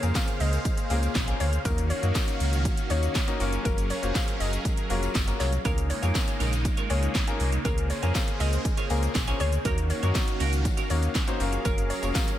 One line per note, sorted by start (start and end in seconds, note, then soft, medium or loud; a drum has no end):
0.00 0.12 F2 medium
0.00 1.61 C#3 medium
0.00 3.36 A#3 medium
0.00 0.50 A#3 medium
0.00 0.50 C#4 medium
0.00 0.51 F4 medium
0.00 1.63 G#4 loud
0.00 0.51 G#4 medium
0.00 0.51 A#4 medium
0.00 1.63 C5 medium
0.00 9.61 F5 loud
0.00 closed hi-hat medium
0.00 tambourine soft
0.00 shaker medium
0.15 0.33 F5 medium
0.15 kick loud
0.15 snare medium
0.15 clap loud
0.15 closed hi-hat medium
0.15 tambourine loud
0.15 shaker medium
0.28 closed hi-hat medium
0.28 shaker medium
0.40 0.58 C#2 medium
0.40 0.49 D#5 medium
0.40 open hi-hat medium
0.40 tambourine medium
0.40 shaker medium
0.53 closed hi-hat medium
0.53 tambourine soft
0.53 shaker medium
0.65 kick loud
0.65 closed hi-hat medium
0.65 tambourine soft
0.65 shaker medium
0.77 closed hi-hat medium
0.77 shaker medium
0.90 1.08 C#2 medium
0.90 1.11 A#3 medium
0.90 1.11 C#4 medium
0.90 1.11 F4 medium
0.90 1.11 G#4 medium
0.90 1.11 A#4 loud
0.90 open hi-hat medium
0.90 tambourine medium
0.90 shaker medium
1.03 closed hi-hat medium
1.03 tambourine soft
1.03 shaker medium
1.15 1.33 A#1 medium
1.15 kick loud
1.15 snare medium
1.15 clap loud
1.15 closed hi-hat medium
1.15 tambourine medium
1.15 shaker medium
1.27 1.48 A#3 medium
1.27 1.48 C#4 medium
1.27 1.48 F4 medium
1.27 1.48 G#4 medium
1.27 1.48 A#4 medium
1.27 closed hi-hat medium
1.27 shaker medium
1.40 1.58 D2 loud
1.40 1.49 C#5 medium
1.40 open hi-hat medium
1.40 tambourine soft
1.40 shaker medium
1.53 closed hi-hat medium
1.53 shaker medium
1.65 1.92 D#2 loud
1.65 3.38 D#3 medium
1.65 1.86 A#3 medium
1.65 1.86 C#4 medium
1.65 5.61 C#4 medium
1.65 1.86 D#4 medium
1.65 3.38 F#4 loud
1.65 1.86 F#4 medium
1.65 1.83 A#4 loud
1.65 1.86 A#4 medium
1.65 kick loud
1.65 closed hi-hat medium
1.65 tambourine soft
1.65 shaker medium
1.78 closed hi-hat medium
1.78 shaker medium
1.90 2.37 C#5 medium
1.90 open hi-hat medium
1.90 tambourine soft
1.90 shaker medium
2.02 2.12 F#2 loud
2.02 2.50 A#3 medium
2.02 2.50 C#4 medium
2.02 2.50 D#4 medium
2.02 2.51 F#4 medium
2.02 2.51 A#4 medium
2.02 closed hi-hat medium
2.02 shaker medium
2.15 kick loud
2.15 snare medium
2.15 clap loud
2.15 closed hi-hat medium
2.15 tambourine loud
2.15 shaker medium
2.28 closed hi-hat medium
2.28 shaker medium
2.40 2.67 C#2 medium
2.40 open hi-hat medium
2.40 tambourine medium
2.40 shaker medium
2.53 closed hi-hat medium
2.53 tambourine soft
2.53 shaker medium
2.65 kick loud
2.65 closed hi-hat medium
2.65 tambourine soft
2.65 shaker medium
2.77 closed hi-hat medium
2.77 shaker medium
2.90 3.08 D#2 medium
2.90 3.11 A#3 medium
2.90 3.11 C#4 medium
2.90 3.11 D#4 medium
2.90 3.11 F#4 medium
2.90 2.99 C#5 medium
2.90 3.11 C#5 medium
2.90 open hi-hat medium
2.90 tambourine medium
2.90 shaker medium
3.03 closed hi-hat medium
3.03 shaker medium
3.15 kick loud
3.15 snare loud
3.15 clap loud
3.15 closed hi-hat medium
3.15 tambourine medium
3.15 shaker medium
3.27 3.38 A#3 medium
3.27 3.39 C#4 medium
3.27 3.40 D#4 medium
3.27 3.39 F#4 medium
3.27 3.39 A#4 loud
3.27 closed hi-hat medium
3.27 shaker medium
3.40 3.58 F#1 loud
3.40 5.63 F#3 medium
3.40 3.90 A#3 loud
3.40 3.90 C#4 medium
3.40 3.90 F4 medium
3.40 3.90 F#4 medium
3.40 5.63 G#4 medium
3.40 5.63 A#4 loud
3.40 3.90 A#4 loud
3.40 open hi-hat medium
3.40 tambourine soft
3.40 shaker medium
3.53 closed hi-hat medium
3.53 shaker medium
3.65 3.92 F#1 loud
3.65 3.83 A#4 loud
3.65 kick loud
3.65 closed hi-hat medium
3.65 tambourine soft
3.65 shaker medium
3.78 closed hi-hat medium
3.78 shaker medium
3.90 4.08 C#5 medium
3.90 open hi-hat medium
3.90 tambourine soft
3.90 shaker medium
4.02 4.12 F1 loud
4.02 4.50 A#3 medium
4.02 4.50 C#4 medium
4.02 4.50 F4 medium
4.02 4.51 F#4 medium
4.02 4.51 C5 medium
4.02 closed hi-hat medium
4.02 shaker medium
4.15 4.33 F5 medium
4.15 kick loud
4.15 snare medium
4.15 clap loud
4.15 closed hi-hat medium
4.15 tambourine loud
4.15 shaker medium
4.28 closed hi-hat medium
4.28 shaker medium
4.40 4.58 F#1 medium
4.40 4.49 D#5 medium
4.40 open hi-hat medium
4.40 tambourine medium
4.40 shaker medium
4.53 closed hi-hat medium
4.53 shaker medium
4.65 kick loud
4.65 closed hi-hat medium
4.65 tambourine soft
4.65 shaker medium
4.77 closed hi-hat medium
4.77 shaker medium
4.90 5.08 F1 medium
4.90 5.11 A#3 medium
4.90 5.11 C#4 medium
4.90 5.11 F4 medium
4.90 5.11 F#4 medium
4.90 5.11 A#4 loud
4.90 open hi-hat medium
4.90 tambourine medium
4.90 shaker medium
5.03 closed hi-hat medium
5.03 tambourine soft
5.03 shaker medium
5.15 5.33 F#1 loud
5.15 kick loud
5.15 snare medium
5.15 clap loud
5.15 closed hi-hat medium
5.15 tambourine medium
5.15 shaker medium
5.27 5.48 A#3 medium
5.27 5.48 C#4 medium
5.27 5.48 F4 medium
5.27 5.48 F#4 medium
5.27 5.48 A#4 medium
5.27 closed hi-hat medium
5.27 shaker medium
5.40 5.58 C2 medium
5.40 5.49 C#5 medium
5.40 clap medium
5.40 open hi-hat medium
5.40 tambourine soft
5.40 shaker medium
5.53 closed hi-hat medium
5.53 shaker medium
5.65 5.92 C#2 loud
5.65 9.61 C#3 medium
5.65 7.63 G#3 medium
5.65 5.85 A#3 medium
5.65 11.36 A#3 medium
5.65 5.84 C#4 medium
5.65 5.86 C#4 medium
5.65 7.63 D#4 medium
5.65 5.86 F4 medium
5.65 5.77 F4 medium
5.65 5.86 G#4 medium
5.65 5.83 A#4 loud
5.65 5.86 A#4 medium
5.65 5.77 A#4 medium
5.65 5.76 C#5 medium
5.65 kick loud
5.65 closed hi-hat medium
5.65 tambourine soft
5.65 shaker medium
5.78 muted clean electric guitar stroke medium
5.78 closed hi-hat medium
5.78 shaker medium
5.90 6.37 C#5 medium
5.90 muted clean electric guitar stroke soft
5.90 open hi-hat medium
5.90 tambourine soft
5.90 shaker medium
6.02 6.12 F2 loud
6.02 6.50 A#3 medium
6.02 6.50 C#4 medium
6.02 6.18 C#4 soft
6.02 6.50 F4 medium
6.02 6.17 F4 medium
6.02 6.51 G#4 medium
6.02 6.51 A#4 medium
6.02 6.17 A#4 medium
6.02 6.17 C#5 medium
6.02 closed hi-hat medium
6.02 tambourine soft
6.02 shaker medium
6.15 kick loud
6.15 snare medium
6.15 clap loud
6.15 closed hi-hat medium
6.15 tambourine loud
6.15 shaker medium
6.28 muted clean electric guitar stroke medium
6.28 closed hi-hat medium
6.28 shaker medium
6.40 6.67 A#1 medium
6.40 6.59 C#4 medium
6.40 6.52 F4 medium
6.40 6.52 A#4 medium
6.40 6.51 C#5 medium
6.40 open hi-hat medium
6.40 tambourine medium
6.40 shaker medium
6.53 muted clean electric guitar stroke soft
6.53 closed hi-hat medium
6.53 tambourine soft
6.53 shaker medium
6.65 muted clean electric guitar stroke soft
6.65 kick loud
6.65 closed hi-hat medium
6.65 tambourine soft
6.65 shaker medium
6.77 6.89 C#4 medium
6.77 6.89 F4 medium
6.77 6.89 A#4 medium
6.77 6.90 C#5 medium
6.77 closed hi-hat medium
6.77 shaker medium
6.90 7.08 C#2 loud
6.90 7.11 A#3 medium
6.90 7.11 C#4 medium
6.90 7.11 F4 medium
6.90 7.11 G#4 medium
6.90 7.11 A#4 medium
6.90 6.99 C#5 medium
6.90 muted clean electric guitar stroke soft
6.90 open hi-hat medium
6.90 tambourine medium
6.90 shaker medium
7.03 muted clean electric guitar stroke soft
7.03 closed hi-hat medium
7.03 shaker medium
7.15 muted clean electric guitar stroke soft
7.15 kick loud
7.15 snare medium
7.15 clap loud
7.15 closed hi-hat medium
7.15 tambourine medium
7.15 shaker medium
7.27 7.48 A#3 medium
7.27 7.48 C#4 medium
7.27 7.48 F4 medium
7.27 7.48 G#4 medium
7.27 7.48 A#4 loud
7.27 muted clean electric guitar stroke medium
7.27 closed hi-hat medium
7.27 shaker medium
7.40 7.58 C2 medium
7.40 open hi-hat medium
7.40 tambourine soft
7.40 shaker medium
7.52 muted clean electric guitar stroke medium
7.52 closed hi-hat medium
7.52 shaker medium
7.65 7.92 C#2 loud
7.65 7.85 A#3 medium
7.65 7.86 C#4 medium
7.65 7.84 C#4 medium
7.65 7.86 F4 medium
7.65 7.77 F4 medium
7.65 7.86 G#4 medium
7.65 9.63 G#4 loud
7.65 7.77 G#4 loud
7.65 7.83 A#4 loud
7.65 7.86 A#4 medium
7.65 9.63 C5 medium
7.65 7.76 C#5 loud
7.65 kick loud
7.65 closed hi-hat medium
7.65 tambourine soft
7.65 shaker medium
7.78 muted clean electric guitar stroke medium
7.78 closed hi-hat medium
7.78 shaker medium
7.90 8.08 C#5 medium
7.90 muted clean electric guitar stroke soft
7.90 open hi-hat medium
7.90 tambourine soft
7.90 shaker medium
8.02 8.12 F2 medium
8.02 8.50 A#3 medium
8.02 8.50 C#4 medium
8.02 8.18 C#4 medium
8.02 8.51 F4 medium
8.02 8.17 F4 medium
8.02 8.51 G#4 medium
8.02 8.17 G#4 medium
8.02 8.51 A#4 medium
8.02 8.17 C#5 medium
8.02 closed hi-hat medium
8.02 tambourine soft
8.02 shaker medium
8.15 8.33 F5 medium
8.15 kick loud
8.15 snare medium
8.15 clap loud
8.15 closed hi-hat medium
8.15 tambourine loud
8.15 shaker medium
8.28 muted clean electric guitar stroke soft
8.28 closed hi-hat medium
8.28 shaker medium
8.40 8.58 C#2 loud
8.40 8.59 C#4 medium
8.40 8.52 F4 medium
8.40 8.52 G#4 medium
8.40 8.52 C#5 loud
8.40 8.49 D#5 medium
8.40 open hi-hat medium
8.40 tambourine medium
8.40 shaker medium
8.53 muted clean electric guitar stroke soft
8.53 closed hi-hat medium
8.53 shaker medium
8.65 muted clean electric guitar stroke soft
8.65 kick loud
8.65 closed hi-hat medium
8.65 tambourine soft
8.65 shaker medium
8.77 8.89 C#4 medium
8.77 8.89 F4 medium
8.77 8.89 G#4 medium
8.77 8.90 C#5 medium
8.77 closed hi-hat medium
8.77 tambourine soft
8.77 shaker medium
8.90 9.08 C#2 medium
8.90 9.11 A#3 medium
8.90 9.11 C#4 medium
8.90 9.11 F4 medium
8.90 9.11 G#4 medium
8.90 9.11 A#4 loud
8.90 muted clean electric guitar stroke soft
8.90 open hi-hat medium
8.90 tambourine medium
8.90 shaker medium
9.03 muted clean electric guitar stroke soft
9.03 closed hi-hat medium
9.03 shaker medium
9.15 9.33 A#1 medium
9.15 muted clean electric guitar stroke soft
9.15 kick loud
9.15 snare loud
9.15 clap loud
9.15 closed hi-hat medium
9.15 tambourine medium
9.15 shaker medium
9.27 9.48 A#3 medium
9.27 9.48 C#4 medium
9.27 9.39 C#4 medium
9.27 9.48 F4 medium
9.27 9.39 F4 medium
9.27 9.39 G#4 medium
9.27 9.48 G#4 medium
9.27 9.40 C#5 medium
9.27 9.48 C#5 medium
9.27 closed hi-hat medium
9.27 shaker medium
9.40 9.58 D2 loud
9.40 9.59 C#4 medium
9.40 9.52 F4 medium
9.40 9.52 G#4 medium
9.40 9.49 C#5 medium
9.40 9.51 C#5 loud
9.40 open hi-hat medium
9.40 tambourine soft
9.40 shaker medium
9.52 muted clean electric guitar stroke soft
9.52 closed hi-hat medium
9.52 shaker medium
9.65 9.92 D#2 loud
9.65 11.39 D#3 medium
9.65 9.86 A#3 medium
9.65 9.84 C#4 medium
9.65 9.86 C#4 medium
9.65 12.39 C#4 medium
9.65 9.86 D#4 medium
9.65 11.39 F#4 medium
9.65 9.77 F#4 medium
9.65 9.86 F#4 medium
9.65 9.83 A#4 loud
9.65 9.86 A#4 medium
9.65 9.77 A#4 loud
9.65 9.76 C#5 loud
9.65 12.39 F5 medium
9.65 kick loud
9.65 closed hi-hat medium
9.65 tambourine soft
9.65 shaker medium
9.78 muted clean electric guitar stroke soft
9.78 closed hi-hat medium
9.78 shaker medium
9.90 10.37 C#5 medium
9.90 muted clean electric guitar stroke soft
9.90 open hi-hat medium
9.90 tambourine medium
9.90 shaker medium
10.03 10.12 F#2 loud
10.03 10.50 A#3 medium
10.03 10.50 C#4 medium
10.03 10.18 C#4 medium
10.03 10.51 D#4 medium
10.03 10.51 F#4 medium
10.03 10.18 F#4 medium
10.03 10.17 A#4 medium
10.03 10.17 C#5 medium
10.03 10.51 C#5 medium
10.03 closed hi-hat medium
10.03 shaker medium
10.15 kick loud
10.15 snare medium
10.15 clap loud
10.15 closed hi-hat medium
10.15 tambourine loud
10.15 shaker medium
10.28 muted clean electric guitar stroke medium
10.28 closed hi-hat medium
10.28 shaker medium
10.40 10.67 C#2 medium
10.40 10.59 C#4 medium
10.40 10.52 F#4 loud
10.40 10.52 A#4 loud
10.40 10.51 C#5 loud
10.40 open hi-hat medium
10.40 tambourine medium
10.40 shaker medium
10.53 muted clean electric guitar stroke medium
10.53 closed hi-hat medium
10.53 tambourine soft
10.53 shaker medium
10.65 muted clean electric guitar stroke soft
10.65 kick loud
10.65 closed hi-hat medium
10.65 tambourine soft
10.65 shaker medium
10.77 10.89 C#4 medium
10.77 10.89 F#4 medium
10.77 10.89 A#4 medium
10.77 10.89 C#5 medium
10.77 closed hi-hat medium
10.77 tambourine soft
10.77 shaker medium
10.90 11.08 D#2 medium
10.90 11.11 A#3 medium
10.90 11.11 C#4 medium
10.90 11.11 D#4 medium
10.90 11.11 F#4 medium
10.90 11.11 A#4 medium
10.90 10.99 C#5 medium
10.90 open hi-hat medium
10.90 tambourine medium
10.90 shaker medium
11.02 muted clean electric guitar stroke medium
11.02 closed hi-hat medium
11.02 shaker medium
11.15 muted clean electric guitar stroke soft
11.15 kick loud
11.15 snare loud
11.15 clap loud
11.15 closed hi-hat medium
11.15 tambourine medium
11.15 shaker medium
11.27 11.38 A#3 medium
11.27 11.39 C#4 medium
11.27 11.40 D#4 medium
11.27 11.39 F#4 medium
11.27 11.40 C5 loud
11.27 muted clean electric guitar stroke medium
11.27 closed hi-hat medium
11.27 shaker medium
11.40 11.58 F#1 loud
11.40 12.39 F#3 medium
11.40 11.90 A#3 loud
11.40 11.90 C#4 loud
11.40 11.90 F4 medium
11.40 11.90 F#4 medium
11.40 12.39 G#4 medium
11.40 12.39 A#4 medium
11.40 11.90 A#4 loud
11.40 open hi-hat medium
11.40 tambourine soft
11.40 shaker medium
11.52 muted clean electric guitar stroke soft
11.52 closed hi-hat medium
11.52 shaker medium
11.65 11.92 F#1 loud
11.65 11.84 C#4 medium
11.65 11.77 F4 loud
11.65 11.83 A#4 loud
11.65 11.77 A#4 medium
11.65 11.76 C#5 loud
11.65 kick loud
11.65 closed hi-hat medium
11.65 tambourine soft
11.65 shaker medium
11.77 muted clean electric guitar stroke soft
11.77 closed hi-hat medium
11.77 shaker medium
11.90 12.08 C#5 medium
11.90 muted clean electric guitar stroke soft
11.90 open hi-hat medium
11.90 tambourine medium
11.90 shaker medium
12.02 12.11 F1 loud
12.02 12.39 A#3 medium
12.02 12.39 C#4 medium
12.02 12.18 C#4 medium
12.02 12.39 F4 medium
12.02 12.17 F4 medium
12.02 12.39 F#4 medium
12.02 12.17 A#4 medium
12.02 12.39 A#4 medium
12.02 12.17 C#5 medium
12.02 closed hi-hat medium
12.02 tambourine soft
12.02 shaker medium
12.15 12.33 F5 medium
12.15 kick loud
12.15 snare medium
12.15 clap loud
12.15 closed hi-hat medium
12.15 tambourine loud
12.15 shaker medium
12.27 muted clean electric guitar stroke soft
12.27 closed hi-hat medium
12.27 shaker medium